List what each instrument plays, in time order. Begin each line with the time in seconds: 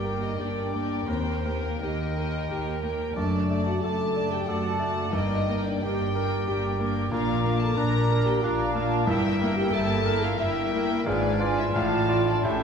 Already playing: double bass section G1, cello section G2, grand piano G2 A#3 G4, french horn section G4, clarinet A#4, oboe D5, violin section G5, flute section G5
0.04 viola section A#3 G4, violin section A#4 G5, grand piano A#4
0.21 french horn section D#4, violin section D#5
0.38 double bass section G1, cello section G2, viola section A#3 G4, french horn section D4, grand piano G4, violin section A#4 D5 G5, clarinet A#4, oboe D5, flute section G5
0.73 viola section A#3 G4, grand piano A#3, violin section A#4 G5
1.06 double bass section D#2, cello section D#2, grand piano D#2, viola section A#3 G4, french horn section C4, oboe A#4, violin section A#4 C5 G5, clarinet A#4, flute section G5
1.43 viola section A#3 G4, grand piano A#3, violin section A#4 G5
1.63 french horn section A#3, violin section A#4
1.80 cello section D#2, double bass section D#2, viola section A#3 G4, french horn section D#4, grand piano G4, violin section A#4 D#5 G5, oboe A#4, clarinet A#4, flute section G5
2.15 viola section A#3 G4, violin section A#4 G5, grand piano A#4
2.48 cello section D#2, double bass section D#2, viola section A#3 G4, grand piano G4, violin section A#4 G5
2.82 viola section A#3 G4, grand piano A#3, violin section A#4 G5
3.15 double bass section F#1, cello section F#2, grand piano F#2, viola section A3 D4, french horn section D4, clarinet A4, violin section D5 A5, oboe D5, flute section A5
3.49 viola section A3 D4, grand piano A3, violin section D5 A5
3.66 french horn section F#4, violin section F#5
3.82 double bass section F#1, cello section F#2, viola section A3 D4, french horn section A4, clarinet A4, grand piano A4, violin section D5 A5, oboe D5, flute section A5
4.15 viola section A3 D4, grand piano D5, violin section D5 A5
4.32 french horn section G4, violin section G5
4.47 double bass section F#1, cello section F#2, viola section A3 D4, french horn section F#4, clarinet A4, grand piano A4, violin section D5 F#5 A5, oboe D5, flute section A5
4.78 grand piano A3, viola section A3 D4, violin section D5 A5
5.12 double bass section G1, cello section G2, grand piano G2, viola section A#3 D4, french horn section D#4, violin section A#4 D#5 G5, clarinet A#4, oboe D5, flute section G5
5.46 viola section A#3 D4, grand piano A#3, violin section A#4 G5
5.64 french horn section D4, violin section D5
5.82 double bass section G1, cello section G2, viola section A#3 D4, french horn section G4, grand piano G4, violin section A#4 G5, clarinet A#4, oboe D5, flute section G5
6.15 viola section A#3 D4, grand piano A#4, violin section A#4 G5
6.47 double bass section G1, cello section G2, viola section A#3 D4, grand piano G4, violin section A#4 G5
6.79 viola section A#3 D4, grand piano A#3, violin section A#4 G5
7.11 double bass section A#1, cello section A#2, grand piano A#2, viola section A#3 D4, french horn section F4, violin section A#4 D5 F5, clarinet A#4, oboe D5, flute section A#5
7.44 viola section A#3 D4, grand piano A#3, violin section A#4 D5
7.60 french horn section A4, violin section A5
7.76 double bass section A#1, cello section A#2, viola section A#3 D4, grand piano D4, violin section A#4 D5 A#5, french horn section A#4, clarinet A#4, oboe D5, flute section A#5
8.09 viola section A#3 D4, violin section A#4 D5, grand piano A#4
8.26 french horn section G4, violin section G5
8.41 double bass section A#1, cello section A#2, viola section A#3 D4, grand piano D4, french horn section F4, violin section A#4 D5 F5, clarinet A#4, oboe D5, flute section A#5
8.74 viola section A#3 D4, grand piano A#3, violin section A#4 D5, flute section A5
9.06 double bass section G1, grand piano G2, cello section G2, viola section A#3 E4, french horn section E4, clarinet A#4, violin section A#4 E5 G5, oboe E5, flute section G5
9.40 viola section A#3 E4, grand piano A#3, violin section A#4 G5
9.56 french horn section G4, violin section G5
9.72 double bass section G1, cello section G2, viola section A#3 E4, grand piano E4, french horn section A4, violin section A#4 G5 A5
10.05 viola section A#3 E4, grand piano A#4, violin section A#4 G5
10.23 french horn section F4, violin section F5
10.38 double bass section G1, cello section G2, viola section A#3 E4, french horn section E4, grand piano E4, violin section A#4 E5 G5, clarinet A#4, oboe E5, flute section G5
10.72 viola section A#3 E4, grand piano A#3, violin section A#4 G5
11.05 double bass section G#1, grand piano G#2, cello section G#2, viola section G#3 F4, french horn section D4, violin section B4 D5, clarinet B4, oboe F5, flute section G#5
11.39 viola section G#3 F4, grand piano F4 D5, violin section B4 D5
11.58 french horn section E4, violin section E5
11.72 double bass section A1, cello section A2, grand piano A2, viola section F3 F4, french horn section F4, violin section A4 D5 F5, clarinet D5, oboe F5, flute section A5
12.08 viola section F3 F4, grand piano F4 D5, violin section A4 D5
12.26 french horn section D4, violin section D5
12.43 double bass section A1, cello section A2, grand piano A2, viola section A3 G4, french horn section C#4, violin section A4 C#5 E5, clarinet E5, oboe G5, flute section A5